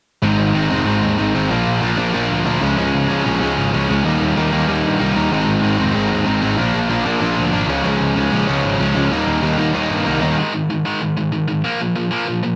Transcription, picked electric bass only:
0.23 G#1
0.39 G#1
0.55 G#1
0.72 F1
0.87 G#1
1.03 D#2
1.19 G#1
1.35 G#1
1.51 A#1
1.67 A#1
1.82 A#1
1.98 A#1
2.15 A#1
2.30 D2
2.46 D2
2.62 C#2
2.78 C#2
2.94 C#2
3.09 C#2
3.26 A#1
3.42 C#2
3.58 G#1
3.74 C#2
3.90 C#2
4.06 D#2
4.21 D#2
4.38 D#2
4.53 D#2
4.69 D#2
4.85 G2
5.00 C2
5.16 D#2
5.32 G#1
5.48 G#1
5.64 G#1
5.80 F1
5.96 G#1
6.12 D#2
6.28 G#1
6.43 G#1
6.58 A#1
6.75 A#1
6.89 A#1
7.06 A#1
7.22 A#1
7.38 D2
7.54 G#1
7.69 C#2
7.85 C#2
8.01 C#2
8.16 C#2
8.33 A#1
8.49 C#2
8.65 G#1
8.80 C#2
8.96 C#2
9.11 D#2
9.27 D#2
9.43 D#2
9.59 D#2
9.75 D#2
9.90 G2
10.07 C2
10.22 D#2

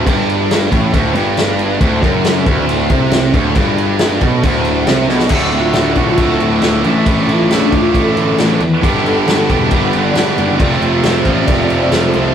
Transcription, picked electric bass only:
0.07 G1
0.72 A1
0.94 D1
1.15 G1
1.81 D1
2.03 F#1
2.47 D1
2.90 C2
3.34 D1
3.56 G1
4.22 B1
4.44 D1
4.87 C2
5.09 B1
5.30 D1
5.52 D1
5.74 D1
5.96 B1
6.18 D1
6.40 D1
6.62 D1
6.84 A1
7.07 A1
7.28 A1
7.49 A1
7.72 D2
7.94 A1
8.17 A1
8.39 A1
8.61 E2
8.83 G1
9.05 G1
9.27 G1
9.49 E1
9.72 G1
9.94 G1
10.15 G1
10.38 F#1
10.60 F1
10.82 F1
11.03 F1
11.25 A1
11.48 F1
11.70 F1
11.92 F1
12.14 C2

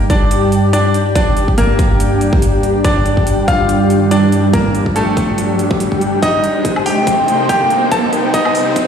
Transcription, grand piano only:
0.10 D4 D5
0.73 D4 D5
1.15 D4 D5
1.58 A#3 A#4
2.85 D4 D5
3.48 F4 F5
4.11 D4 D5
4.53 A#3 A#4
4.96 A3 A4
6.23 D#4 D#5
6.86 G4 G5
7.49 G4 G5
7.92 A4 A5
8.34 D#4 D#5

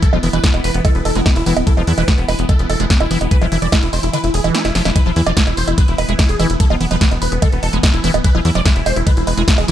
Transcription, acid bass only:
0.03 E3
0.13 F3
0.23 E3
0.33 E3
0.44 G#3
0.85 D3
1.16 G#3
1.46 E3
1.67 E3
1.77 F3
1.87 E3
1.98 E3
2.08 G#3
2.49 D3
2.80 G#3
3.11 E3
3.31 E3
3.42 F3
3.52 E3
3.62 E3
3.72 G#3
4.13 D3
4.44 E3
4.55 E4
4.75 F3
4.85 F3
4.96 E3
5.06 F3
5.16 E3
5.26 F3
5.37 G#3
5.78 D3
6.09 G#3
6.39 E3
6.60 E3
6.70 F3
6.81 E3
6.91 F3
7.01 G#3
7.42 D3
7.73 G#3
8.04 E3
8.24 E3
8.35 F3
8.45 E3
8.55 F3
8.66 G#3
9.07 D3
9.37 G#3
9.68 E3

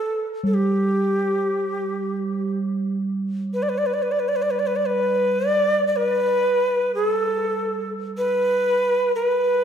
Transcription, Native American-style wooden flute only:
Already playing: A4
0.47 A4
0.54 G4
3.54 B4
3.62 D5
3.69 B4
3.78 D5
3.86 B4
3.93 D5
4.02 B4
4.11 D5
4.19 B4
4.28 D5
4.36 B4
4.42 D5
4.50 B4
4.59 D5
4.67 B4
4.76 D5
4.86 B4
5.46 D5
5.87 D5
5.96 B4
6.95 G#4
7.10 A4
8.18 B4
9.15 B4

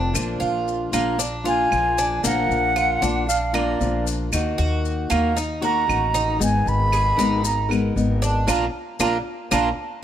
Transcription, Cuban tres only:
Already playing: D4
0.40 F4
0.93 A#3
1.19 D4
1.45 F4
1.98 D4
2.24 A#3
2.76 F4
3.02 D4
3.54 A#3
4.58 F#4
5.10 A#3
5.37 D#4
5.62 F#4
6.14 D#4
6.93 G#4
7.19 D#4
8.22 D4
8.48 A#3 D4 F4
9.00 A#3 D4 F4
9.51 A#3 D4 F4

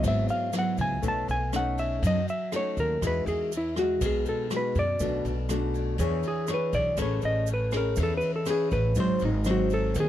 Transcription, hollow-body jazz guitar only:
0.08 E5
0.30 F5
0.59 F#5
0.81 G#5
1.08 A5
1.31 G#5
1.56 F#5
1.79 E5
2.07 D#5
2.30 E5
2.56 C#5
2.80 A#4
3.07 B4
3.28 G#4
3.57 E4
3.79 F#4
4.06 G#4
4.29 A4
4.57 B4
4.79 D5
6.28 G#4
6.54 B4
6.75 D5
7.02 C#5
7.25 D#5
7.54 B4
7.77 A#4
8.03 A4
8.17 B4
8.36 A4
8.50 G#4
8.73 B4
9.00 C5
9.25 D#4
9.51 F#4
9.74 A4
10.00 G#4

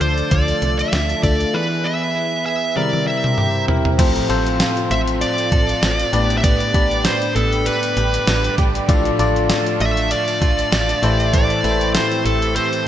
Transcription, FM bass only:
0.01 D2
0.32 D2
0.62 C2
0.93 D2
1.23 D2
3.99 A1
4.30 A1
4.91 A1
5.52 A1
5.83 A1
6.13 A1
6.74 A1
7.36 A1
7.97 A1
8.27 A1
8.58 A1
8.89 A1
9.19 A1
9.80 A1
10.42 A1
10.72 A1
11.03 A1
11.64 A1
12.25 A1

